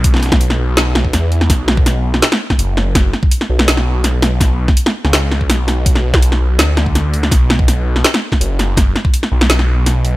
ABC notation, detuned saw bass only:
X:1
M:4/4
L:1/16
Q:1/4=165
K:Bm
V:1 name="Detuned saw bass" clef=bass
B,,,6 B,,,6 E,,4 | B,,,8 z4 F,,,4- | F,,,2 z4 B,,,8- B,,,2- | B,,,3 z4 C,,4- C,, B,,,4- |
B,,,6 B,,,2 D,,8 | B,,,8 z4 F,,,4- | F,,,2 z4 B,,,8- B,,,2 |]